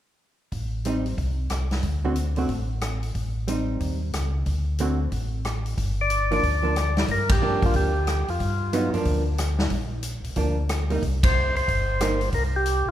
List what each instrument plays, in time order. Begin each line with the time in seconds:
0.52 tonewheel organ A1, kick, open hi-hat
0.85 hollow-body jazz guitar G3 C4 D#4, closed hi-hat
1.06 open hi-hat
1.17 tonewheel organ C2, kick, open hi-hat
1.50 tonewheel organ C2, cross-stick, closed hi-hat
1.71 snare, open hi-hat
1.83 tonewheel organ D2, kick, open hi-hat
2.05 hollow-body jazz guitar D3 A3 C4 F#4
2.15 closed hi-hat
2.36 hollow-body jazz guitar D3 A3 C4 F#4, open hi-hat
2.48 tonewheel organ A1, kick, open hi-hat
2.81 cross-stick, closed hi-hat
3.03 open hi-hat
3.15 tonewheel organ A1, kick, open hi-hat
3.48 hollow-body jazz guitar G3 C4 D#4, closed hi-hat
3.80 tonewheel organ D#2, kick, open hi-hat
4.13 tonewheel organ C#2, cross-stick, closed hi-hat
4.46 tonewheel organ D2, kick, open hi-hat
4.78 hollow-body jazz guitar D3 A3 C4 F#4, closed hi-hat
5.12 tonewheel organ A1, kick, open hi-hat
5.45 cross-stick, closed hi-hat
5.66 open hi-hat
5.77 tonewheel organ G1, kick, open hi-hat
6.01 tonewheel organ D5
6.10 closed hi-hat
6.31 hollow-body jazz guitar F3 A#3 D4, tonewheel organ D5, open hi-hat
6.43 tonewheel organ D2, kick, open hi-hat
6.63 hollow-body jazz guitar F3 A#3 D4
6.76 cross-stick, closed hi-hat
6.97 snare, open hi-hat
7.08 tonewheel organ G2 A#4, kick, open hi-hat
7.29 tonewheel organ G4, kick, ride
7.42 hollow-body jazz guitar F3 A#3 D4
7.62 tonewheel organ F#2 F4, kick, open hi-hat
7.74 tonewheel organ D2 G4, kick, open hi-hat
8.07 tonewheel organ G4, cross-stick, closed hi-hat
8.28 tonewheel organ F2 F4, open hi-hat
8.40 tonewheel organ G2, kick, open hi-hat
8.73 hollow-body jazz guitar F#3 B3 D#4, closed hi-hat
8.93 tonewheel organ F#2, hollow-body jazz guitar F3 A#3 D4, open hi-hat
9.05 tonewheel organ D2, kick, open hi-hat
9.38 cross-stick, closed hi-hat
9.59 snare
9.70 tonewheel organ A#1, kick, open hi-hat
10.03 closed hi-hat
10.24 tonewheel organ A#1, open hi-hat
10.36 tonewheel organ D2, hollow-body jazz guitar F3 A#3 D4, kick, open hi-hat
10.69 cross-stick, closed hi-hat
10.90 hollow-body jazz guitar G3 A#3 D#4, open hi-hat
11.02 tonewheel organ C2, kick, open hi-hat
11.23 tonewheel organ C5, kick, ride
11.55 tonewheel organ C2 C5, open hi-hat
11.68 tonewheel organ G1, kick, open hi-hat
12.00 hollow-body jazz guitar G3 A#3 D#4, cross-stick, closed hi-hat
12.21 open hi-hat
12.32 tonewheel organ C2 A#4, kick, open hi-hat
12.56 tonewheel organ G4
12.66 closed hi-hat
12.86 tonewheel organ A#1